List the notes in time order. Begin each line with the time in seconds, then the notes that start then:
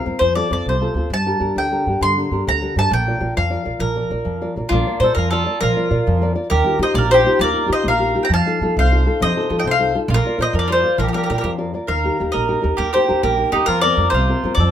Already playing: F5
0.06 F2 C4 F4 A#4
0.19 F2 F3 C5
0.35 C4 F4 A4 D5
0.50 F2 C4 F4 A4 D5
0.66 C2 C3 C5
0.81 C4 F4 A4
0.94 D2 C4 F4 A4
1.10 G2 G3 A5
1.26 D4 G4 A#4
1.40 G2 D4 G4 A#4
1.56 D2 D3 G5
1.71 D4 G4 A#4
1.86 G2 D4 G4 A#4
2.01 G2 D3 C6
2.18 D4 G4 A#4
2.31 G2 D4 G4 A#4
2.47 D2 D3 A#5
2.62 D4 G4 A#4
2.76 G2 D4 G4 A#4 A5
2.91 A#1 A#3 G5
3.07 F4 A#4 D5
3.21 A#1 F4 A#4 D5
3.36 F2 F3 F5
3.50 F4 A#4 D5
3.65 A#1 F4 A#4 D5
3.79 A#1 F3 A#4
3.96 F4 A#4 D5
4.10 A#1 F4 A#4 D5
4.25 F2 F3
4.41 F4 A#4 D5
4.56 A#1 F4 A#4 D5
4.69 A#1 D4 F4
4.74 A#3
4.87 F4 A#4 D5
5.00 A#2 F4 A4 A#4 C5 D5
5.15 F2 F3 F4 A#4
5.31 F4 A4 A#4 D5
5.46 F4 A#4 D5
5.60 A#1 F3 F4 A#4
5.77 F4 A#4 D5
5.90 A#2 F4 A#4 D5
6.07 F2 F3
6.21 F4 A#4 D5
6.35 F4 A#4 D5
6.50 D#2 D#3 G4 A#4
6.64 D#4 F4 G4
6.79 D#3 D#4 F4 G4 D#5
6.83 C5
6.94 A#1 A#3 A#4 D5
7.09 D#4 F4 G4 C5
7.14 G4
7.24 D#4 F4 G4
7.39 D#2 A#3 D5
7.43 A#4
7.53 D#4 F4 G4
7.66 D#3 D#4 F4 G4
7.73 C5 D#5
7.83 A#1 A#3
7.88 A#4 F5
7.99 D#4 F4 G4
8.14 D#4 F4 G4
8.23 G5 A#5
8.29 F2 F3
8.34 F5 A5
8.46 D#4 F4 A4
8.61 F3 D#4 F4 A4
8.77 C2 C3 C5 F5
8.92 D#4 F4 A4
9.06 D#4 F4 A4
9.20 F2 C3 C5 D#5
9.36 D#4 F4 A4
9.50 F3 D#4 F4 A4
9.59 D#5 G5
9.64 C2 C3 C5
9.71 F5
9.79 D#4 F4 A4
9.95 D#4 F4 A4
10.08 A#1 A#3 F4
10.14 A#4
10.25 F4 A#4 D5
10.39 A#2 F4 A#4 C5 D5 D#5
10.53 F2 F3 A#4
10.59 D5
10.68 F4 A#4 D5
10.72 C5
10.83 F4 A#4 D5
10.98 A#1 F3 F4 A#4
11.03 G4
11.08 A#4
11.13 F4 G4 A#4 D5
11.17 G4
11.24 G4 A#4
11.30 A#2 F4 G4 A#4 D5
11.38 G4 A#4
11.43 F2 F3 A#4
11.58 F4 A#4 D5
11.74 F4 A#4 D5
11.87 D#2 D#3 A#4 F5
12.04 D#4 G4 A#4
12.20 D#2 D#4 G4 A#4
12.32 A#1 A#3 A#4 D#5
12.49 D#4 G4 A#4
12.61 D#2 D#4 G4 A#4
12.77 D#2 A#3 G4 A#4
12.93 D#4 G4 A#4 C5
13.08 D#2 D#4 G4 A#4
13.23 A#1 A#3 G4 A#4
13.37 D#4 G4 A#4
13.52 D#2 D#4 G4 A#4
13.66 F2 F3 F4 A#4
13.81 C4 F4 A#4 D5
13.97 F2 C4 F4 A#4
14.10 C2 C5
14.14 C3 F4
14.29 C4 F4 A#4
14.44 F2 C4 F4 A#4
14.55 F2 D5
14.60 F3 A4